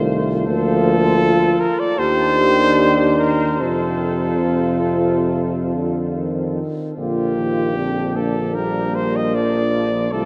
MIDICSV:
0, 0, Header, 1, 6, 480
1, 0, Start_track
1, 0, Key_signature, -2, "major"
1, 0, Tempo, 736196
1, 309, Time_signature, 4, 2, 24, 8
1, 793, Tempo, 776197
1, 1753, Tempo, 851064
1, 3193, Tempo, 827586
1, 4153, Tempo, 782269
1, 6163, End_track
2, 0, Start_track
2, 0, Title_t, "Cornet"
2, 0, Program_c, 0, 56
2, 0, Note_on_c, 0, 72, 116
2, 69, Note_off_c, 0, 72, 0
2, 305, Note_on_c, 0, 69, 107
2, 1031, Note_on_c, 0, 70, 91
2, 1040, Note_off_c, 0, 69, 0
2, 1152, Note_on_c, 0, 74, 101
2, 1161, Note_off_c, 0, 70, 0
2, 1268, Note_on_c, 0, 72, 117
2, 1277, Note_off_c, 0, 74, 0
2, 1982, Note_off_c, 0, 72, 0
2, 1985, Note_on_c, 0, 70, 91
2, 2225, Note_on_c, 0, 69, 72
2, 2234, Note_off_c, 0, 70, 0
2, 3676, Note_off_c, 0, 69, 0
2, 4151, Note_on_c, 0, 67, 83
2, 4879, Note_on_c, 0, 69, 74
2, 4888, Note_off_c, 0, 67, 0
2, 5117, Note_on_c, 0, 70, 86
2, 5126, Note_off_c, 0, 69, 0
2, 5365, Note_on_c, 0, 72, 81
2, 5374, Note_off_c, 0, 70, 0
2, 5494, Note_on_c, 0, 75, 80
2, 5503, Note_off_c, 0, 72, 0
2, 5607, Note_on_c, 0, 74, 93
2, 5616, Note_off_c, 0, 75, 0
2, 6082, Note_on_c, 0, 69, 77
2, 6091, Note_off_c, 0, 74, 0
2, 6163, Note_off_c, 0, 69, 0
2, 6163, End_track
3, 0, Start_track
3, 0, Title_t, "French horn section"
3, 0, Program_c, 1, 60
3, 0, Note_on_c, 1, 65, 67
3, 280, Note_off_c, 1, 65, 0
3, 307, Note_on_c, 1, 65, 87
3, 1251, Note_off_c, 1, 65, 0
3, 1261, Note_on_c, 1, 67, 74
3, 2129, Note_off_c, 1, 67, 0
3, 2225, Note_on_c, 1, 65, 72
3, 3939, Note_off_c, 1, 65, 0
3, 4145, Note_on_c, 1, 65, 65
3, 4611, Note_off_c, 1, 65, 0
3, 4642, Note_on_c, 1, 62, 58
3, 5114, Note_off_c, 1, 62, 0
3, 5121, Note_on_c, 1, 62, 56
3, 6057, Note_off_c, 1, 62, 0
3, 6083, Note_on_c, 1, 65, 66
3, 6163, Note_off_c, 1, 65, 0
3, 6163, End_track
4, 0, Start_track
4, 0, Title_t, "Euphonium"
4, 0, Program_c, 2, 58
4, 0, Note_on_c, 2, 57, 82
4, 301, Note_on_c, 2, 58, 87
4, 311, Note_off_c, 2, 57, 0
4, 1098, Note_off_c, 2, 58, 0
4, 1270, Note_on_c, 2, 62, 98
4, 2225, Note_on_c, 2, 60, 74
4, 2233, Note_off_c, 2, 62, 0
4, 3962, Note_off_c, 2, 60, 0
4, 4153, Note_on_c, 2, 58, 69
4, 4640, Note_on_c, 2, 60, 68
4, 4649, Note_off_c, 2, 58, 0
4, 4884, Note_on_c, 2, 58, 72
4, 4893, Note_off_c, 2, 60, 0
4, 6075, Note_off_c, 2, 58, 0
4, 6079, Note_on_c, 2, 57, 66
4, 6163, Note_off_c, 2, 57, 0
4, 6163, End_track
5, 0, Start_track
5, 0, Title_t, "Trombone"
5, 0, Program_c, 3, 57
5, 0, Note_on_c, 3, 51, 72
5, 283, Note_off_c, 3, 51, 0
5, 308, Note_on_c, 3, 53, 87
5, 1086, Note_off_c, 3, 53, 0
5, 1265, Note_on_c, 3, 51, 86
5, 2222, Note_on_c, 3, 48, 64
5, 2230, Note_off_c, 3, 51, 0
5, 2662, Note_off_c, 3, 48, 0
5, 2709, Note_on_c, 3, 48, 70
5, 3436, Note_on_c, 3, 50, 56
5, 3445, Note_off_c, 3, 48, 0
5, 3678, Note_on_c, 3, 51, 64
5, 3687, Note_off_c, 3, 50, 0
5, 4145, Note_off_c, 3, 51, 0
5, 4148, Note_on_c, 3, 50, 65
5, 4377, Note_off_c, 3, 50, 0
5, 4395, Note_on_c, 3, 51, 65
5, 4634, Note_off_c, 3, 51, 0
5, 4641, Note_on_c, 3, 50, 60
5, 5127, Note_on_c, 3, 55, 62
5, 5136, Note_off_c, 3, 50, 0
5, 5609, Note_on_c, 3, 53, 65
5, 5618, Note_off_c, 3, 55, 0
5, 5974, Note_off_c, 3, 53, 0
5, 6079, Note_on_c, 3, 51, 69
5, 6163, Note_off_c, 3, 51, 0
5, 6163, End_track
6, 0, Start_track
6, 0, Title_t, "Tuba"
6, 0, Program_c, 4, 58
6, 0, Note_on_c, 4, 36, 82
6, 311, Note_on_c, 4, 38, 92
6, 321, Note_off_c, 4, 36, 0
6, 1103, Note_off_c, 4, 38, 0
6, 1270, Note_on_c, 4, 39, 81
6, 2205, Note_off_c, 4, 39, 0
6, 2229, Note_on_c, 4, 41, 74
6, 3941, Note_off_c, 4, 41, 0
6, 4151, Note_on_c, 4, 34, 70
6, 6074, Note_on_c, 4, 36, 74
6, 6083, Note_off_c, 4, 34, 0
6, 6163, Note_off_c, 4, 36, 0
6, 6163, End_track
0, 0, End_of_file